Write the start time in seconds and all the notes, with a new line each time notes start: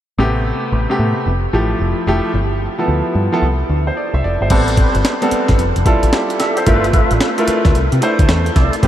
0.18 A1 C3 A3 B3 G4
0.72 A1
0.90 C3 A3 B3 G4
0.99 A2
1.26 F1
1.53 A1 F3 A3 E4 G4
1.80 F1
2.07 F1 F3 A3 E4 G4
2.34 G1
2.78 F3 B3 E4 A4
2.88 D2
3.15 G2
3.32 F3 B3 E4 A4
3.42 C2
3.69 D2
3.87 C5
3.97 D5
4.14 C2 E5
4.24 F1 D5
4.41 G1 C5
4.50 A1 G3 B3 C4 G4 A4 B4 C5, kick, closed hi-hat, crash
4.68 closed hi-hat
4.77 G4 B4 C5, kick, closed hi-hat
4.95 G1, closed hi-hat
5.05 snare, closed hi-hat
5.22 G3 B3 C4 A4, closed hi-hat
5.31 muted picked electric bass stroke, closed hi-hat
5.48 G1, kick, snare, closed hi-hat
5.59 F1, closed hi-hat
5.76 F1, closed hi-hat
5.86 G3 E4 F4 A4, kick, closed hi-hat
6.03 A1, closed hi-hat
6.13 G4, snare, closed hi-hat
6.30 closed hi-hat
6.39 G4 A4 E5, snare, closed hi-hat
6.57 C5, closed hi-hat
6.66 G1 A3 E4 F4 A4 A#4 B4 E5, kick, closed hi-hat
6.74 B4
6.84 closed hi-hat
6.93 F4 A4 B4 E5, kick, closed hi-hat
7.11 A1, closed hi-hat
7.21 snare, closed hi-hat
7.38 A3 E4 F4 A#4, closed hi-hat
7.46 B4, muted picked electric bass stroke, closed hi-hat
7.65 D2, kick, snare, closed hi-hat
7.75 C2, closed hi-hat
7.92 C3, closed hi-hat
8.02 A3 D4 E4 C5, closed hi-hat
8.19 D2, kick, closed hi-hat
8.29 E2, snare, closed hi-hat
8.46 closed hi-hat
8.56 C2 E4 A4 D5, kick, snare, closed hi-hat
8.73 closed hi-hat
8.82 A1 A3 C4 G4 B4 C5, kick, closed hi-hat